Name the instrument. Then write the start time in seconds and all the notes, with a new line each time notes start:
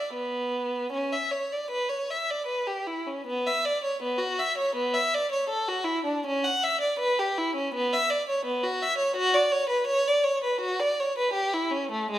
violin
Already playing: D5
0.14 B3
0.92 C#4
1.13 E5
1.31 C#5
1.52 D5
1.71 B4
1.89 C#5
2.10 E5
2.30 D5
2.46 B4
2.67 G4
2.87 E4
3.07 C#4
3.27 B3
3.46 E5
3.65 D5
3.84 C#5
4.03 B3
4.18 F#4
4.39 E5
4.58 C#5
4.75 B3
4.94 E5
5.14 D5
5.32 C#5
5.49 A4
5.68 F#4
5.84 E4
6.05 D4
6.26 C#4
6.44 F#5
6.63 E5
6.81 D5
6.99 B4
7.19 G4
7.38 E4
7.56 C#4
7.74 B3
7.93 E5
8.10 D5
8.29 C#5
8.45 B3
8.64 F#4
8.82 E5
8.98 C#5
9.16 F#4
9.34 D5
9.52 C#5
9.69 B4
9.87 C#5
10.07 D5
10.24 C#5
10.44 B4
10.60 F#4
10.80 D5
11.00 C#5
11.18 B4
11.33 G4
11.54 E4
11.71 C#4
11.92 A3
12.11 G#3